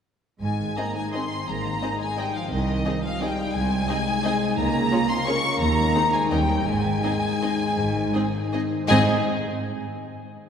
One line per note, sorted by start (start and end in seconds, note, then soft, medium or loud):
0.42 0.71 G#1 soft
0.42 0.71 G#2 soft
0.42 1.46 G#2 soft
0.42 0.75 G#3 soft
0.42 0.75 G#5 medium
0.59 1.63 D#3 soft
0.77 0.96 A#3 soft
0.77 0.86 C4 soft
0.77 0.85 D#4 soft
0.77 0.85 G#4 soft
0.77 0.85 D#5 soft
0.77 0.96 A#5 medium
0.96 1.14 G#3 soft
0.96 1.31 D#4 soft
0.96 1.14 G#5 medium
1.13 1.47 C4 soft
1.13 1.22 C4 soft
1.13 1.22 D#4 soft
1.13 1.22 G#4 soft
1.13 2.17 C5 soft
1.13 1.22 D#5 soft
1.13 1.47 C6 medium
1.32 1.99 D#4 soft
1.47 1.76 G#1 soft
1.47 2.52 G#2 soft
1.47 1.76 G#2 soft
1.47 1.99 A#3 soft
1.47 2.00 A#5 medium
1.64 2.53 D#3 soft
1.82 2.84 G#3 soft
1.82 1.90 C4 soft
1.82 1.90 D#4 soft
1.82 1.90 G#4 soft
1.82 1.90 D#5 soft
1.99 2.17 G#3 soft
1.99 2.34 D#4 soft
1.99 2.17 G#5 medium
2.17 2.35 G3 medium
2.17 2.25 C4 soft
2.17 2.25 D#4 soft
2.17 2.26 G#4 soft
2.17 3.20 C5 soft
2.17 2.26 D#5 soft
2.17 2.35 G5 medium
2.34 2.51 F3 soft
2.34 3.02 D#4 soft
2.34 2.52 F5 medium
2.50 2.79 C2 medium
2.50 3.54 C3 soft
2.50 3.03 D#3 medium
2.50 3.03 D#5 medium
2.68 3.70 C4 soft
2.85 3.88 G#3 soft
2.85 2.93 C4 soft
2.85 2.93 D#4 soft
2.85 2.93 G#4 soft
2.85 2.93 D#5 soft
3.03 3.21 F3 medium
3.03 3.37 D#4 soft
3.03 3.21 F5 medium
3.21 3.55 G3 medium
3.21 3.29 C4 soft
3.21 3.29 D#4 soft
3.21 3.29 G#4 soft
3.21 4.23 C5 soft
3.21 3.29 D#5 soft
3.21 3.55 G5 medium
3.38 4.06 D#4 soft
3.54 3.83 C2 medium
3.54 4.59 C3 soft
3.54 4.58 G#3 medium
3.54 4.57 G#5 medium
3.71 4.59 C4 soft
3.88 4.90 G#3 soft
3.88 3.97 C4 soft
3.88 3.96 D#4 medium
3.88 3.97 G#4 soft
3.88 3.97 D#5 soft
4.07 4.41 D#4 soft
4.24 4.33 C4 soft
4.24 4.32 D#4 soft
4.24 4.32 G#4 soft
4.24 4.59 C5 soft
4.24 4.32 D#5 soft
4.42 4.59 D#4 soft
4.57 4.85 C#2 medium
4.57 4.86 C#2 medium
4.57 5.62 C#3 medium
4.57 5.09 A#3 medium
4.57 5.08 A#5 medium
4.74 5.62 C#4 soft
4.91 5.77 G#3 soft
4.91 4.99 A#3 medium
4.91 4.99 F4 medium
4.91 5.00 G#4 soft
4.91 4.99 C#5 medium
5.09 5.27 C4 medium
5.09 5.43 F4 soft
5.09 5.27 C6 medium
5.27 5.36 A#3 soft
5.27 5.61 C#4 medium
5.27 5.36 F4 soft
5.27 5.35 G#4 medium
5.27 5.62 A#4 soft
5.27 5.35 C#5 medium
5.27 5.61 C#6 medium
5.45 5.62 F4 soft
5.60 5.89 D#2 medium
5.60 6.31 D#3 medium
5.60 6.13 A#3 medium
5.60 6.12 A#5 medium
5.78 6.34 G#3 soft
5.95 6.03 C4 medium
5.95 6.03 D#4 medium
5.95 6.49 D#4 soft
5.95 6.03 G#4 soft
5.95 6.03 C5 soft
6.13 6.32 G#3 medium
6.13 6.34 C5 soft
6.13 6.32 G#5 medium
6.31 6.62 D#2 medium
6.31 6.69 D#3 medium
6.31 6.67 G3 medium
6.31 6.39 C#4 soft
6.31 6.40 D#4 soft
6.31 6.39 A#4 soft
6.31 6.39 D#5 soft
6.31 6.66 G5 medium
6.50 7.22 D#4 soft
6.50 6.69 C#5 soft
6.66 6.97 G#1 medium
6.66 6.97 G#2 medium
6.66 7.77 G#2 soft
6.66 8.67 G#3 medium
6.66 8.71 G#5 medium
6.85 7.94 D#3 soft
7.03 8.13 G#3 soft
7.03 7.12 C4 soft
7.03 7.11 D#4 soft
7.03 7.12 G#4 soft
7.03 7.12 D#5 soft
7.23 7.60 D#4 soft
7.42 7.50 C4 soft
7.42 7.50 D#4 soft
7.42 7.50 G#4 soft
7.42 8.51 C5 soft
7.42 7.50 D#5 soft
7.61 8.32 D#4 soft
7.78 8.08 G#1 medium
7.78 8.08 G#2 medium
7.78 8.84 G#2 soft
7.96 8.90 D#3 soft
8.14 8.86 G#3 soft
8.14 8.23 C4 soft
8.14 8.23 D#4 soft
8.14 8.22 G#4 soft
8.14 8.22 D#5 soft
8.33 8.69 D#4 soft
8.52 8.61 C4 soft
8.52 8.61 D#4 soft
8.52 8.61 G#4 soft
8.52 8.87 C5 soft
8.52 8.61 D#5 soft
8.71 8.87 D#4 soft
8.84 9.08 G#1 medium
8.84 9.08 G#2 medium
8.84 9.08 G#3 medium
8.84 9.02 G#3 medium
8.84 9.08 D#4 medium
8.84 9.07 G#4 medium
8.84 9.08 D#5 medium
8.84 9.07 G#5 medium
8.89 9.08 G#2 medium
8.89 9.08 C4 medium
8.89 9.08 D#4 medium
8.89 9.08 C5 medium
8.89 9.08 D#5 medium